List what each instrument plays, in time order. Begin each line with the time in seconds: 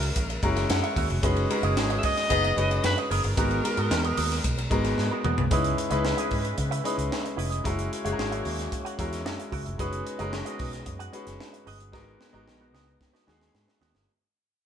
Already playing: fingered electric bass C#2, grand piano G#3 C#4 E4 F#4 A#4, alto saxophone A#4
0.03 muted clean electric guitar stroke, ride
0.16 fingered electric bass A#1, muted clean electric guitar stroke, kick, hi-hat pedal, ride
0.30 muted clean electric guitar stroke, ride
0.42 fingered electric bass F#1, grand piano G#3 C#4 E4 F#4 A#4 A#5, kick, ride
0.56 muted clean electric guitar stroke, snare, ride
0.70 fingered electric bass F#2, grand piano F#5, muted clean electric guitar stroke, snare, ride
0.83 clean electric guitar F#4 A#4 E5, ride
0.96 fingered electric bass D#2, clean electric guitar F#4 A#4 E5, kick, open hi-hat, ride
1.10 fingered electric bass F1, muted clean electric guitar stroke, ride
1.23 fingered electric bass F#1, grand piano G#3 C#4 D#4 F#4 B4, clean electric guitar G#4 B4 D#5, kick, hi-hat pedal, ride
1.36 ride
1.50 grand piano G#3 C#4 D#4 F#4 A#4, horn section G#3 B3 F#4 B4, muted clean electric guitar stroke, ride
1.62 fingered electric bass F#1, horn section G#3 C#4 F#4 C#5, clean electric guitar G#4 B4 D#5, ride
1.77 fingered electric bass G#1, alto saxophone G#4, muted clean electric guitar stroke, snare, ride
1.90 clean electric guitar G#4 B4 D#5, ride
1.98 alto saxophone E5
2.03 clean electric guitar G#4 B4 D#5, alto saxophone D#5, kick, open hi-hat, ride
2.17 muted clean electric guitar stroke, snare, ride
2.30 fingered electric bass F#1, horn section B3 D#4 G#4 D#5, muted clean electric guitar stroke, kick, hi-hat pedal, ride
2.44 muted clean electric guitar stroke, ride
2.56 fingered electric bass F#1, grand piano G#3 C#4 D#4 F#4 B4, ride
2.71 muted clean electric guitar stroke, ride
2.84 fingered electric bass F#2, alto saxophone B4, muted clean electric guitar stroke, snare, ride
2.98 clean electric guitar G#4 B4 D#5, ride
3.10 fingered electric bass F#1, clean electric guitar G#4 B4 D#5, alto saxophone A#4, open hi-hat, ride
3.24 fingered electric bass G1, muted clean electric guitar stroke, ride
3.36 fingered electric bass G#1, grand piano G#3 B3 D#4 F#4 A#4, clean electric guitar B3 F#4 A#4, kick, hi-hat pedal, ride
3.51 ride
3.63 grand piano G#3 B3 D#4 F#4 A#4, muted clean electric guitar stroke, ride
3.77 fingered electric bass G#2, clean electric guitar B3 F#4 A#4, ride
3.91 fingered electric bass E2, muted clean electric guitar stroke, snare, ride
4.04 clean electric guitar B3 F#4 A#4, ride
4.17 fingered electric bass D#2, clean electric guitar B3 F#4 A#4, open hi-hat, ride
4.31 muted clean electric guitar stroke, snare, ride
4.44 fingered electric bass B1, muted clean electric guitar stroke, kick, hi-hat pedal, ride
4.58 muted clean electric guitar stroke, ride
4.70 fingered electric bass G#1, grand piano G#3 B3 D#4 F#4 A#4, kick, ride
4.84 muted clean electric guitar stroke, snare, ride
4.98 fingered electric bass G#2, muted clean electric guitar stroke, snare
5.11 clean electric guitar B3 F#4 A#4
5.24 fingered electric bass E2, clean electric guitar B3 F#4 A#4, mid tom
5.38 fingered electric bass C2, muted clean electric guitar stroke, floor tom
5.51 fingered electric bass C#2, grand piano G#3 C#4 D#4 E4 B4, horn section G#3 B3 E4 B4, clean electric guitar E4 B4 D#5, kick, closed hi-hat
5.64 closed hi-hat
5.78 muted clean electric guitar stroke, closed hi-hat
5.90 fingered electric bass C#2, grand piano G#3 C#4 D#4 E4 B4, clean electric guitar E4 B4 D#5, closed hi-hat
6.05 muted clean electric guitar stroke, snare
6.17 clean electric guitar E4 B4 D#5, closed hi-hat
6.30 fingered electric bass G#2, clean electric guitar E4 B4 D#5, kick, open hi-hat
6.44 muted clean electric guitar stroke, closed hi-hat
6.58 fingered electric bass C#3, muted clean electric guitar stroke, kick, closed hi-hat
6.71 clean electric guitar E4 B4 E5, closed hi-hat
6.84 grand piano G#3 C#4 D#4 E4 B4, clean electric guitar E4 B4 D#5, closed hi-hat
6.98 fingered electric bass C#2, muted clean electric guitar stroke, closed hi-hat
7.11 muted clean electric guitar stroke, snare
7.24 muted clean electric guitar stroke, closed hi-hat
7.37 fingered electric bass F1, clean electric guitar E4 B4 D#5, open hi-hat
7.50 clean electric guitar E4 B4 D#5, closed hi-hat
7.64 fingered electric bass F#1, grand piano G#3 C#4 E4 F#4 A#4, horn section A#3 C#4 F#4 C#5, clean electric guitar F#4 A#4 E5, kick, closed hi-hat
7.79 closed hi-hat
7.91 muted clean electric guitar stroke, closed hi-hat
8.04 fingered electric bass F#1, grand piano G#3 C#4 E4 F#4 G#4, clean electric guitar F#4 A#4 E5, closed hi-hat
8.12 grand piano A#4
8.18 fingered electric bass G#1, muted clean electric guitar stroke, snare
8.31 clean electric guitar F#4 A#4 E5, closed hi-hat
8.45 fingered electric bass D#2, clean electric guitar F#4 A#4 E5, open hi-hat
8.58 muted clean electric guitar stroke, snare, closed hi-hat
8.72 muted clean electric guitar stroke, kick, closed hi-hat
8.85 clean electric guitar F#4 A#4 F#5, closed hi-hat
8.98 fingered electric bass E2, grand piano G#3 C#4 E4 F#4 A#4, clean electric guitar F#4 A#4 E5, kick, closed hi-hat
9.12 muted clean electric guitar stroke, snare, closed hi-hat
9.25 fingered electric bass F#2, muted clean electric guitar stroke, snare
9.39 muted clean electric guitar stroke, closed hi-hat
9.52 fingered electric bass C#2, clean electric guitar F#4 A#4 E5, kick, open hi-hat
9.65 fingered electric bass F1, clean electric guitar F#4 A#4 E5, closed hi-hat
9.78 fingered electric bass F#1, grand piano G#3 C#4 D#4 F#4 B4, horn section B3 D#4 G#4 D#5, clean electric guitar F#4 G#4 D#5, kick, closed hi-hat
9.93 closed hi-hat
10.05 muted clean electric guitar stroke, closed hi-hat
10.19 fingered electric bass F#1, grand piano G#3 C#4 D#4 F#4 A#4, clean electric guitar F#4 G#4 D#5, closed hi-hat
10.32 muted clean electric guitar stroke, snare
10.45 clean electric guitar F#4 G#4 D#5, closed hi-hat
10.59 fingered electric bass B1, clean electric guitar F#4 G#4 D#5, kick, open hi-hat
10.72 muted clean electric guitar stroke, snare, closed hi-hat
10.86 fingered electric bass F#2, muted clean electric guitar stroke, kick, closed hi-hat
10.99 clean electric guitar F#4 G#4 F#5, closed hi-hat
11.13 grand piano G#3 C#4 D#4 F#4 B4, clean electric guitar F#4 G#4 D#5, closed hi-hat
11.26 fingered electric bass F#1, muted clean electric guitar stroke, snare, closed hi-hat
11.40 muted clean electric guitar stroke, snare
11.53 muted clean electric guitar stroke, closed hi-hat
11.66 fingered electric bass G1, clean electric guitar F#4 G#4 D#5, open hi-hat
11.79 clean electric guitar F#4 D#5, closed hi-hat
11.92 fingered electric bass G#1, grand piano G#3 B3 D#4 F#4 A#4, clean electric guitar B3 F#4 A#4, horn section B3 D#4 A#4 D#5, kick, snare
12.20 muted clean electric guitar stroke, snare
12.33 fingered electric bass G#1, grand piano G#3 B3 D#4 F#4 A#4, clean electric guitar B3 F#4 A#4
12.46 fingered electric bass A#1, muted clean electric guitar stroke, snare
12.60 clean electric guitar B3 F#4 A#4
12.73 fingered electric bass C#2, clean electric guitar B3 F#4 A#4, snare
12.86 muted clean electric guitar stroke
13.00 muted clean electric guitar stroke, kick, snare
13.13 clean electric guitar B3 F#4 B4, snare
13.26 fingered electric bass D#2, grand piano G#3 B3 D#4 F#4 G#4, clean electric guitar B3 F#4 A#4, snare
13.41 muted clean electric guitar stroke, snare
13.54 fingered electric bass G#2, muted clean electric guitar stroke, snare
13.67 muted clean electric guitar stroke, snare
13.81 fingered electric bass D#2, clean electric guitar B3 F#4 A#4, snare
13.94 fingered electric bass G1, clean electric guitar B3 F#4 A#4, snare